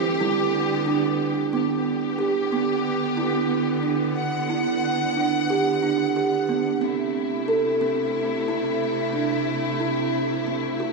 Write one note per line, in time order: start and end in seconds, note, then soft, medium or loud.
0.00 0.18 E3 medium
0.00 0.18 C4 medium
0.00 0.20 C4 medium
0.00 1.48 G4 medium
0.20 1.50 D3 medium
0.20 1.50 G3 medium
0.20 1.51 B3 medium
0.20 0.86 E4 medium
0.86 1.52 D4 medium
1.52 6.78 D3 medium
1.52 6.78 B3 medium
1.52 2.19 B3 medium
1.52 4.14 G4 medium
2.19 2.52 G4 medium
2.52 3.18 B3 medium
3.17 3.84 E4 medium
3.83 4.50 D4 medium
4.18 6.80 F#5 medium
4.50 5.16 E4 medium
5.17 5.50 D4 medium
5.50 5.83 G4 medium
5.83 6.16 D4 medium
6.16 6.49 G4 medium
6.49 6.82 B3 medium
6.81 10.93 C3 medium
6.81 10.93 A3 medium
6.81 7.48 C4 medium
6.81 10.93 E4 medium
7.48 7.81 A4 medium
7.81 8.48 C4 medium
8.48 9.14 E4 medium
9.14 9.80 D4 medium
9.80 10.47 E4 medium
10.47 10.80 C4 medium
10.80 10.93 F#4 medium